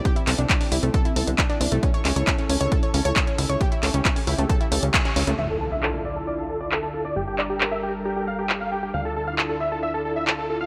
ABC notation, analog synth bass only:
X:1
M:4/4
L:1/16
Q:1/4=135
K:Dm
V:1 name="Analog synth bass" clef=bass
z2 C,, C,, z2 C,, C,, z2 C,, C,, z2 C,, C,, | z2 ^C,, C,, z2 C,, C,, z2 C,, C,, z2 C,, C,, | z2 ^C,, C,, z2 C,, C,, z2 C,, C,, z2 C,, C,, | D,,16 |
G,,,16 | D,,16 |]